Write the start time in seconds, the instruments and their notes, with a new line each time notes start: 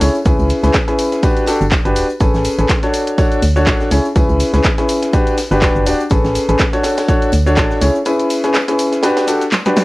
0.01 fm bass C#2, upright piano C#4 E4 G#4 C#5, open hi-hat, tambourine, cabasa
0.15 tambourine, cabasa
0.25 fm bass C#2, upright piano C#4 E4 G#4 B4, kick, closed hi-hat, tambourine, cabasa
0.39 fm bass C#2, tambourine, cabasa
0.50 open hi-hat, tambourine, cabasa
0.63 fm bass C#2, upright piano C#4 E4 G#4 B4, snare, closed hi-hat, tambourine, cabasa
0.74 kick, snare, clap, closed hi-hat, tambourine, cabasa
0.88 upright piano C#4 E4 G#4 B4, snare, closed hi-hat, cabasa
0.99 open hi-hat, tambourine, cabasa
1.12 snare, closed hi-hat, tambourine, cabasa
1.23 upright piano D4 F#4 G4 B4, kick, closed hi-hat, tambourine, cabasa
1.37 closed hi-hat, tambourine, cabasa
1.46 upright piano D4 F#4 G4 A4, snare, open hi-hat, tambourine, cabasa
1.61 fm bass G1, tambourine, cabasa
1.71 fm bass D1, kick, snare, clap, closed hi-hat, tambourine, cabasa
1.85 fm bass G1, upright piano D4 F#4 G4 B4, closed hi-hat, cabasa
1.96 fm bass D1, open hi-hat, tambourine, cabasa
2.10 tambourine, cabasa
2.20 fm bass A1, upright piano C#4 G#4 A4 B4, kick, closed hi-hat, tambourine, cabasa
2.34 fm bass A1, snare, tambourine, cabasa
2.45 open hi-hat, tambourine, cabasa
2.58 fm bass A1, upright piano C#4 G#4 A4 B4, closed hi-hat, tambourine, cabasa
2.69 kick, snare, clap, closed hi-hat, tambourine, cabasa
2.83 upright piano D4 F#4 A4 C#5, snare, closed hi-hat, cabasa
2.94 open hi-hat, tambourine, cabasa
3.07 closed hi-hat, tambourine, cabasa
3.18 upright piano D4 F#4 A4 C#5, kick, closed hi-hat, tambourine, cabasa
3.32 closed hi-hat, tambourine, cabasa
3.42 fm bass D2, open hi-hat, tambourine, cabasa
3.56 upright piano D4 F#4 A4 C#5, tambourine, cabasa
3.67 fm bass A1, upright piano D4 F#4 A4 C#5, kick, snare, clap, closed hi-hat, tambourine, cabasa
3.80 snare, cabasa
3.91 fm bass C#2, upright piano C#4 E4 G#4 C#5, open hi-hat, tambourine, cabasa
4.05 tambourine, cabasa
4.16 fm bass C#2, upright piano C#4 E4 G#4 B4, kick, closed hi-hat, tambourine, cabasa
4.29 fm bass C#2, tambourine, cabasa
4.40 open hi-hat, tambourine, cabasa
4.54 fm bass C#2, upright piano C#4 E4 G#4 B4, snare, closed hi-hat, tambourine, cabasa
4.64 kick, snare, clap, closed hi-hat, tambourine, cabasa
4.66 tambourine
4.78 upright piano C#4 E4 G#4 B4, snare, closed hi-hat, cabasa
4.89 open hi-hat, tambourine, cabasa
5.02 snare, closed hi-hat, tambourine, cabasa
5.13 upright piano D4 F#4 G4 B4, kick, closed hi-hat, tambourine, cabasa
5.27 closed hi-hat, tambourine, cabasa
5.38 snare, open hi-hat, tambourine, cabasa
5.51 fm bass G1, upright piano D4 F#4 G4 B4, tambourine, cabasa
5.62 fm bass D1, upright piano D4 F#4 G4, kick, snare, clap, closed hi-hat, tambourine, cabasa
5.76 fm bass G1, cabasa
5.86 fm bass D1, upright piano D4 F#4 G4 D5, open hi-hat, tambourine, cabasa
6.00 tambourine, cabasa
6.10 fm bass A1, upright piano C#4 G#4 A4 B4, kick, closed hi-hat, tambourine, cabasa
6.24 fm bass A1, snare, tambourine, cabasa
6.35 open hi-hat, tambourine, cabasa
6.49 fm bass A1, upright piano C#4 G#4 A4 B4, closed hi-hat, tambourine, cabasa
6.59 kick, snare, clap, closed hi-hat, tambourine, cabasa
6.73 upright piano D4 F#4 A4 C#5, snare, closed hi-hat, cabasa
6.83 snare, open hi-hat, tambourine, cabasa
6.97 snare, closed hi-hat, tambourine, cabasa
7.08 upright piano D4 F#4 A4 C#5, kick, closed hi-hat, tambourine, cabasa
7.22 closed hi-hat, tambourine, cabasa
7.32 fm bass D2, open hi-hat, tambourine, cabasa
7.46 upright piano D4 F#4 A4 C#5, tambourine, cabasa
7.56 fm bass A1, upright piano D4 F#4 A4 C#5, kick, snare, clap, closed hi-hat, tambourine, cabasa
7.71 snare, cabasa
7.81 fm bass C#2, upright piano C#4 E4 G#4 C#5, open hi-hat, tambourine, cabasa
7.95 tambourine, cabasa
8.05 upright piano C#4 E4 G#4 B4, closed hi-hat, tambourine, cabasa
8.20 closed hi-hat, tambourine, cabasa
8.30 open hi-hat, tambourine, cabasa
8.44 upright piano C#4 E4 G#4 B4, snare, closed hi-hat, tambourine, cabasa
8.54 snare, clap, closed hi-hat, tambourine, cabasa
8.68 upright piano C#4 E4 G#4 B4, snare, closed hi-hat, tambourine, cabasa
8.79 open hi-hat, tambourine, cabasa
8.92 snare, closed hi-hat, tambourine, cabasa
9.03 upright piano D4 F#4 G4 B4, snare, closed hi-hat, tambourine, cabasa
9.17 snare, closed hi-hat, tambourine, cabasa
9.28 upright piano D4 F#4 G4 A4, open hi-hat, tambourine, cabasa
9.41 snare, closed hi-hat, tambourine, cabasa
9.52 snare, clap, closed hi-hat, tambourine, cabasa
9.65 upright piano D4 F#4 G4 B4, snare, closed hi-hat, tambourine, cabasa
9.76 snare, open hi-hat, tambourine, cabasa